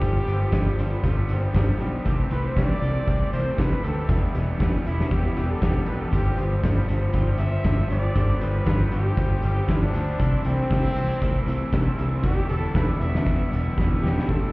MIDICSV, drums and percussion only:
0, 0, Header, 1, 2, 480
1, 0, Start_track
1, 0, Tempo, 509338
1, 22, Time_signature, 4, 2, 24, 8
1, 13686, End_track
2, 0, Start_track
2, 0, Title_t, "Drums"
2, 15, Note_on_c, 9, 36, 106
2, 15, Note_on_c, 9, 42, 89
2, 109, Note_off_c, 9, 36, 0
2, 109, Note_off_c, 9, 42, 0
2, 259, Note_on_c, 9, 42, 67
2, 354, Note_off_c, 9, 42, 0
2, 491, Note_on_c, 9, 42, 92
2, 496, Note_on_c, 9, 36, 106
2, 501, Note_on_c, 9, 38, 102
2, 585, Note_off_c, 9, 42, 0
2, 590, Note_off_c, 9, 36, 0
2, 595, Note_off_c, 9, 38, 0
2, 742, Note_on_c, 9, 42, 73
2, 836, Note_off_c, 9, 42, 0
2, 977, Note_on_c, 9, 36, 109
2, 977, Note_on_c, 9, 42, 92
2, 1071, Note_off_c, 9, 36, 0
2, 1071, Note_off_c, 9, 42, 0
2, 1213, Note_on_c, 9, 42, 76
2, 1307, Note_off_c, 9, 42, 0
2, 1456, Note_on_c, 9, 36, 109
2, 1461, Note_on_c, 9, 42, 98
2, 1471, Note_on_c, 9, 38, 113
2, 1551, Note_off_c, 9, 36, 0
2, 1555, Note_off_c, 9, 42, 0
2, 1565, Note_off_c, 9, 38, 0
2, 1701, Note_on_c, 9, 42, 70
2, 1796, Note_off_c, 9, 42, 0
2, 1939, Note_on_c, 9, 36, 112
2, 1942, Note_on_c, 9, 42, 98
2, 2033, Note_off_c, 9, 36, 0
2, 2036, Note_off_c, 9, 42, 0
2, 2175, Note_on_c, 9, 42, 70
2, 2270, Note_off_c, 9, 42, 0
2, 2419, Note_on_c, 9, 36, 108
2, 2426, Note_on_c, 9, 42, 93
2, 2436, Note_on_c, 9, 38, 103
2, 2513, Note_off_c, 9, 36, 0
2, 2520, Note_off_c, 9, 42, 0
2, 2530, Note_off_c, 9, 38, 0
2, 2662, Note_on_c, 9, 42, 69
2, 2757, Note_off_c, 9, 42, 0
2, 2899, Note_on_c, 9, 36, 106
2, 2904, Note_on_c, 9, 42, 90
2, 2994, Note_off_c, 9, 36, 0
2, 2999, Note_off_c, 9, 42, 0
2, 3142, Note_on_c, 9, 42, 70
2, 3236, Note_off_c, 9, 42, 0
2, 3377, Note_on_c, 9, 36, 105
2, 3379, Note_on_c, 9, 42, 93
2, 3389, Note_on_c, 9, 38, 118
2, 3471, Note_off_c, 9, 36, 0
2, 3473, Note_off_c, 9, 42, 0
2, 3483, Note_off_c, 9, 38, 0
2, 3621, Note_on_c, 9, 42, 63
2, 3716, Note_off_c, 9, 42, 0
2, 3852, Note_on_c, 9, 42, 90
2, 3854, Note_on_c, 9, 36, 117
2, 3946, Note_off_c, 9, 42, 0
2, 3948, Note_off_c, 9, 36, 0
2, 4097, Note_on_c, 9, 42, 66
2, 4192, Note_off_c, 9, 42, 0
2, 4337, Note_on_c, 9, 36, 112
2, 4342, Note_on_c, 9, 42, 83
2, 4353, Note_on_c, 9, 38, 106
2, 4431, Note_off_c, 9, 36, 0
2, 4437, Note_off_c, 9, 42, 0
2, 4447, Note_off_c, 9, 38, 0
2, 4582, Note_on_c, 9, 42, 66
2, 4676, Note_off_c, 9, 42, 0
2, 4717, Note_on_c, 9, 38, 74
2, 4811, Note_off_c, 9, 38, 0
2, 4818, Note_on_c, 9, 36, 101
2, 4819, Note_on_c, 9, 42, 94
2, 4913, Note_off_c, 9, 36, 0
2, 4913, Note_off_c, 9, 42, 0
2, 5058, Note_on_c, 9, 42, 72
2, 5152, Note_off_c, 9, 42, 0
2, 5295, Note_on_c, 9, 42, 98
2, 5296, Note_on_c, 9, 36, 110
2, 5306, Note_on_c, 9, 38, 114
2, 5390, Note_off_c, 9, 36, 0
2, 5390, Note_off_c, 9, 42, 0
2, 5400, Note_off_c, 9, 38, 0
2, 5525, Note_on_c, 9, 42, 70
2, 5619, Note_off_c, 9, 42, 0
2, 5775, Note_on_c, 9, 36, 114
2, 5779, Note_on_c, 9, 42, 99
2, 5794, Note_on_c, 9, 82, 104
2, 5869, Note_off_c, 9, 36, 0
2, 5873, Note_off_c, 9, 42, 0
2, 5889, Note_off_c, 9, 82, 0
2, 5913, Note_on_c, 9, 82, 28
2, 6008, Note_off_c, 9, 82, 0
2, 6008, Note_on_c, 9, 42, 68
2, 6036, Note_on_c, 9, 82, 72
2, 6102, Note_off_c, 9, 42, 0
2, 6130, Note_off_c, 9, 82, 0
2, 6254, Note_on_c, 9, 36, 111
2, 6255, Note_on_c, 9, 42, 95
2, 6265, Note_on_c, 9, 38, 109
2, 6276, Note_on_c, 9, 82, 90
2, 6348, Note_off_c, 9, 36, 0
2, 6349, Note_off_c, 9, 42, 0
2, 6359, Note_off_c, 9, 38, 0
2, 6370, Note_off_c, 9, 82, 0
2, 6394, Note_on_c, 9, 82, 29
2, 6488, Note_off_c, 9, 82, 0
2, 6490, Note_on_c, 9, 42, 74
2, 6510, Note_on_c, 9, 82, 71
2, 6584, Note_off_c, 9, 42, 0
2, 6604, Note_off_c, 9, 82, 0
2, 6721, Note_on_c, 9, 42, 95
2, 6728, Note_on_c, 9, 36, 109
2, 6740, Note_on_c, 9, 82, 96
2, 6816, Note_off_c, 9, 42, 0
2, 6822, Note_off_c, 9, 36, 0
2, 6834, Note_off_c, 9, 82, 0
2, 6861, Note_on_c, 9, 82, 30
2, 6952, Note_on_c, 9, 42, 70
2, 6955, Note_off_c, 9, 82, 0
2, 6975, Note_on_c, 9, 82, 73
2, 7047, Note_off_c, 9, 42, 0
2, 7069, Note_off_c, 9, 82, 0
2, 7107, Note_on_c, 9, 82, 29
2, 7201, Note_on_c, 9, 42, 94
2, 7202, Note_off_c, 9, 82, 0
2, 7207, Note_on_c, 9, 36, 109
2, 7211, Note_on_c, 9, 38, 114
2, 7217, Note_on_c, 9, 82, 88
2, 7295, Note_off_c, 9, 42, 0
2, 7301, Note_off_c, 9, 36, 0
2, 7306, Note_off_c, 9, 38, 0
2, 7311, Note_off_c, 9, 82, 0
2, 7445, Note_on_c, 9, 42, 67
2, 7466, Note_on_c, 9, 82, 78
2, 7539, Note_off_c, 9, 42, 0
2, 7560, Note_off_c, 9, 82, 0
2, 7586, Note_on_c, 9, 82, 29
2, 7681, Note_off_c, 9, 82, 0
2, 7686, Note_on_c, 9, 42, 90
2, 7688, Note_on_c, 9, 36, 115
2, 7714, Note_on_c, 9, 82, 101
2, 7780, Note_off_c, 9, 42, 0
2, 7782, Note_off_c, 9, 36, 0
2, 7808, Note_off_c, 9, 82, 0
2, 7834, Note_on_c, 9, 82, 28
2, 7929, Note_off_c, 9, 82, 0
2, 7929, Note_on_c, 9, 42, 66
2, 7940, Note_on_c, 9, 82, 75
2, 8023, Note_off_c, 9, 42, 0
2, 8034, Note_off_c, 9, 82, 0
2, 8163, Note_on_c, 9, 42, 88
2, 8168, Note_on_c, 9, 36, 112
2, 8174, Note_on_c, 9, 38, 110
2, 8186, Note_on_c, 9, 82, 90
2, 8258, Note_off_c, 9, 42, 0
2, 8262, Note_off_c, 9, 36, 0
2, 8268, Note_off_c, 9, 38, 0
2, 8280, Note_off_c, 9, 82, 0
2, 8317, Note_on_c, 9, 82, 29
2, 8404, Note_on_c, 9, 42, 67
2, 8411, Note_off_c, 9, 82, 0
2, 8420, Note_on_c, 9, 82, 75
2, 8499, Note_off_c, 9, 42, 0
2, 8514, Note_off_c, 9, 82, 0
2, 8641, Note_on_c, 9, 42, 89
2, 8644, Note_on_c, 9, 82, 93
2, 8646, Note_on_c, 9, 36, 113
2, 8735, Note_off_c, 9, 42, 0
2, 8738, Note_off_c, 9, 82, 0
2, 8740, Note_off_c, 9, 36, 0
2, 8780, Note_on_c, 9, 82, 29
2, 8874, Note_off_c, 9, 82, 0
2, 8881, Note_on_c, 9, 42, 70
2, 8898, Note_on_c, 9, 82, 75
2, 8975, Note_off_c, 9, 42, 0
2, 8992, Note_off_c, 9, 82, 0
2, 9024, Note_on_c, 9, 82, 30
2, 9119, Note_off_c, 9, 82, 0
2, 9125, Note_on_c, 9, 42, 91
2, 9129, Note_on_c, 9, 36, 110
2, 9135, Note_on_c, 9, 38, 113
2, 9140, Note_on_c, 9, 82, 91
2, 9219, Note_off_c, 9, 42, 0
2, 9223, Note_off_c, 9, 36, 0
2, 9229, Note_off_c, 9, 38, 0
2, 9234, Note_off_c, 9, 82, 0
2, 9370, Note_on_c, 9, 42, 71
2, 9383, Note_on_c, 9, 82, 77
2, 9464, Note_off_c, 9, 42, 0
2, 9477, Note_off_c, 9, 82, 0
2, 9517, Note_on_c, 9, 82, 28
2, 9610, Note_on_c, 9, 36, 115
2, 9611, Note_off_c, 9, 82, 0
2, 9613, Note_on_c, 9, 42, 99
2, 9634, Note_on_c, 9, 82, 103
2, 9704, Note_off_c, 9, 36, 0
2, 9707, Note_off_c, 9, 42, 0
2, 9728, Note_off_c, 9, 82, 0
2, 9757, Note_on_c, 9, 82, 29
2, 9845, Note_on_c, 9, 42, 74
2, 9851, Note_off_c, 9, 82, 0
2, 9878, Note_on_c, 9, 82, 80
2, 9939, Note_off_c, 9, 42, 0
2, 9972, Note_off_c, 9, 82, 0
2, 10090, Note_on_c, 9, 36, 112
2, 10093, Note_on_c, 9, 42, 99
2, 10104, Note_on_c, 9, 38, 112
2, 10116, Note_on_c, 9, 82, 98
2, 10185, Note_off_c, 9, 36, 0
2, 10188, Note_off_c, 9, 42, 0
2, 10198, Note_off_c, 9, 38, 0
2, 10210, Note_off_c, 9, 82, 0
2, 10236, Note_on_c, 9, 82, 31
2, 10330, Note_off_c, 9, 82, 0
2, 10333, Note_on_c, 9, 42, 76
2, 10357, Note_on_c, 9, 82, 82
2, 10427, Note_off_c, 9, 42, 0
2, 10451, Note_off_c, 9, 82, 0
2, 10572, Note_on_c, 9, 36, 109
2, 10573, Note_on_c, 9, 42, 95
2, 10577, Note_on_c, 9, 82, 98
2, 10666, Note_off_c, 9, 36, 0
2, 10668, Note_off_c, 9, 42, 0
2, 10671, Note_off_c, 9, 82, 0
2, 10708, Note_on_c, 9, 82, 31
2, 10803, Note_off_c, 9, 82, 0
2, 10816, Note_on_c, 9, 42, 75
2, 10828, Note_on_c, 9, 82, 76
2, 10911, Note_off_c, 9, 42, 0
2, 10922, Note_off_c, 9, 82, 0
2, 10953, Note_on_c, 9, 82, 32
2, 11047, Note_off_c, 9, 82, 0
2, 11050, Note_on_c, 9, 42, 96
2, 11052, Note_on_c, 9, 36, 111
2, 11060, Note_on_c, 9, 38, 118
2, 11060, Note_on_c, 9, 82, 97
2, 11144, Note_off_c, 9, 42, 0
2, 11146, Note_off_c, 9, 36, 0
2, 11154, Note_off_c, 9, 82, 0
2, 11155, Note_off_c, 9, 38, 0
2, 11297, Note_on_c, 9, 42, 73
2, 11309, Note_on_c, 9, 82, 84
2, 11392, Note_off_c, 9, 42, 0
2, 11403, Note_off_c, 9, 82, 0
2, 11438, Note_on_c, 9, 82, 31
2, 11526, Note_on_c, 9, 42, 96
2, 11531, Note_on_c, 9, 36, 114
2, 11532, Note_off_c, 9, 82, 0
2, 11551, Note_on_c, 9, 82, 122
2, 11620, Note_off_c, 9, 42, 0
2, 11625, Note_off_c, 9, 36, 0
2, 11645, Note_off_c, 9, 82, 0
2, 11675, Note_on_c, 9, 82, 32
2, 11769, Note_off_c, 9, 82, 0
2, 11777, Note_on_c, 9, 42, 67
2, 11798, Note_on_c, 9, 82, 83
2, 11871, Note_off_c, 9, 42, 0
2, 11892, Note_off_c, 9, 82, 0
2, 11919, Note_on_c, 9, 82, 31
2, 12013, Note_off_c, 9, 82, 0
2, 12015, Note_on_c, 9, 36, 113
2, 12017, Note_on_c, 9, 42, 91
2, 12026, Note_on_c, 9, 82, 94
2, 12028, Note_on_c, 9, 38, 116
2, 12110, Note_off_c, 9, 36, 0
2, 12111, Note_off_c, 9, 42, 0
2, 12120, Note_off_c, 9, 82, 0
2, 12122, Note_off_c, 9, 38, 0
2, 12156, Note_on_c, 9, 82, 28
2, 12250, Note_off_c, 9, 82, 0
2, 12262, Note_on_c, 9, 42, 67
2, 12271, Note_on_c, 9, 82, 76
2, 12356, Note_off_c, 9, 42, 0
2, 12365, Note_off_c, 9, 82, 0
2, 12392, Note_on_c, 9, 38, 82
2, 12486, Note_off_c, 9, 38, 0
2, 12501, Note_on_c, 9, 36, 112
2, 12504, Note_on_c, 9, 82, 94
2, 12506, Note_on_c, 9, 42, 87
2, 12595, Note_off_c, 9, 36, 0
2, 12598, Note_off_c, 9, 82, 0
2, 12601, Note_off_c, 9, 42, 0
2, 12624, Note_on_c, 9, 82, 28
2, 12718, Note_off_c, 9, 82, 0
2, 12752, Note_on_c, 9, 42, 69
2, 12757, Note_on_c, 9, 82, 68
2, 12846, Note_off_c, 9, 42, 0
2, 12852, Note_off_c, 9, 82, 0
2, 12885, Note_on_c, 9, 82, 28
2, 12979, Note_off_c, 9, 82, 0
2, 12984, Note_on_c, 9, 36, 112
2, 12996, Note_on_c, 9, 82, 80
2, 13000, Note_on_c, 9, 38, 66
2, 13078, Note_off_c, 9, 36, 0
2, 13091, Note_off_c, 9, 82, 0
2, 13094, Note_off_c, 9, 38, 0
2, 13114, Note_on_c, 9, 82, 26
2, 13209, Note_off_c, 9, 82, 0
2, 13235, Note_on_c, 9, 82, 70
2, 13247, Note_on_c, 9, 38, 89
2, 13329, Note_off_c, 9, 82, 0
2, 13342, Note_off_c, 9, 38, 0
2, 13371, Note_on_c, 9, 38, 83
2, 13465, Note_off_c, 9, 38, 0
2, 13467, Note_on_c, 9, 36, 105
2, 13561, Note_off_c, 9, 36, 0
2, 13686, End_track
0, 0, End_of_file